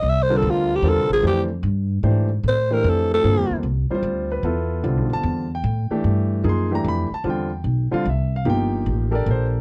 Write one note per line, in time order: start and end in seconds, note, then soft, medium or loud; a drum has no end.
0.00 0.42 C2 medium
0.00 0.11 D#5 loud
0.09 0.24 E5 loud
0.22 0.39 C5 loud
0.30 0.81 D3 medium
0.30 0.81 G3 medium
0.30 0.81 C4 medium
0.30 0.81 F4 medium
0.30 0.81 A#4 medium
0.37 0.52 A4 medium
0.42 0.82 D2 loud
0.50 0.77 F4 medium
0.75 0.90 G4 medium
0.82 0.98 E2 medium
0.82 1.45 D3 medium
0.82 1.45 G3 medium
0.82 1.45 C4 medium
0.82 1.45 F4 medium
0.82 1.45 A#4 medium
0.89 1.12 A4 medium
0.96 1.08 C2 medium
1.09 1.22 A1 medium
1.09 1.24 G#4 loud
1.23 1.62 F2 medium
1.23 1.47 E3 medium
1.23 1.48 A3 medium
1.23 1.47 D4 medium
1.23 1.48 G4 medium
1.23 1.47 C5 medium
1.27 1.42 G4 medium
1.63 2.02 G2 loud
2.03 2.42 G#2 medium
2.03 2.28 E3 medium
2.03 2.28 A3 medium
2.03 2.28 D4 medium
2.03 2.28 G4 medium
2.03 2.28 C5 medium
2.43 2.82 A2 medium
2.48 2.75 C5 medium
2.71 3.21 E3 medium
2.71 3.21 A3 medium
2.71 3.21 D4 medium
2.71 3.21 G4 medium
2.71 2.91 A#4 loud
2.71 3.21 C5 medium
2.84 3.23 F2 loud
2.89 3.13 A4 medium
3.14 3.56 A4 loud
3.23 3.37 G2 medium
3.23 3.64 D3 medium
3.23 3.64 G3 medium
3.23 3.64 A#3 medium
3.23 3.64 C4 medium
3.23 3.64 F4 medium
3.37 3.50 F2 medium
3.50 3.62 E2 medium
3.63 3.88 C2 medium
3.90 4.41 G3 medium
3.90 4.41 C4 medium
3.90 4.42 F4 medium
3.90 3.93 C5 medium
3.90 muted upright bass stroke soft
3.95 4.30 C5 medium
4.03 4.42 D2 medium
4.32 4.81 B4 medium
4.43 4.82 E2 medium
4.43 5.06 B3 medium
4.43 5.06 E4 medium
4.43 4.82 F4 medium
4.43 5.06 A4 medium
4.83 4.97 C2 medium
4.83 5.45 D3 medium
4.83 5.45 G3 medium
4.83 5.46 C4 medium
4.83 5.45 F4 medium
4.97 5.09 B1 medium
5.10 5.23 G1 medium
5.10 5.49 A5 loud
5.23 5.63 E2 loud
5.55 6.03 G5 medium
5.64 5.89 A2 loud
5.91 6.42 E3 medium
5.91 6.42 A3 medium
5.91 6.42 D4 medium
5.91 6.42 G4 medium
5.91 muted upright bass stroke soft
6.04 6.43 G2 medium
6.44 6.83 F#2 medium
6.44 6.68 F3 medium
6.44 6.68 A#3 medium
6.44 6.68 D#4 medium
6.44 6.69 G#4 medium
6.49 6.73 C6 medium
6.71 7.06 E3 medium
6.71 7.06 A3 medium
6.71 7.06 D4 medium
6.71 7.06 G4 medium
6.75 6.86 A#5 loud
6.84 7.09 F2 medium
6.84 7.12 B5 loud
7.11 7.26 A5 loud
7.11 muted upright bass stroke soft
7.24 7.63 E2 medium
7.24 7.48 D3 medium
7.24 7.49 G3 medium
7.24 7.48 C4 medium
7.24 7.49 F4 medium
7.30 7.90 G5 medium
7.64 7.89 B1 medium
7.91 8.04 D3 medium
7.91 8.04 G3 medium
7.91 8.04 C4 medium
7.91 8.04 F4 medium
7.91 8.06 F5 medium
7.91 muted upright bass stroke soft
8.05 8.44 C2 medium
8.05 8.33 E5 medium
8.36 8.47 F5 medium
8.45 8.84 G1 medium
8.45 9.07 F3 medium
8.45 9.07 A#3 medium
8.45 9.07 D#4 medium
8.45 9.07 G4 medium
8.50 9.10 G5 loud
8.86 9.25 A1 medium
9.11 9.61 D4 medium
9.11 9.61 G4 medium
9.11 9.61 A4 medium
9.11 9.61 A#4 medium
9.11 9.27 D5 medium
9.26 9.61 A#1 medium
9.31 9.45 C5 medium